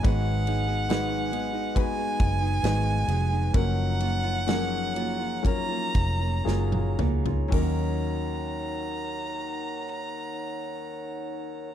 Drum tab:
RD |x-x-x-x-x-x-x-x-|x-x-x-x-x-x-----|----------------|
HH |----------------|----------------|o---------------|
SD |----o-------o---|----o-------o---|----------------|
T1 |----------------|-------------o--|----------------|
T2 |----------------|--------------o-|----------------|
FT |----------------|---------------o|----------------|
BD |o-------o-o-----|o-------o-o-----|o---------------|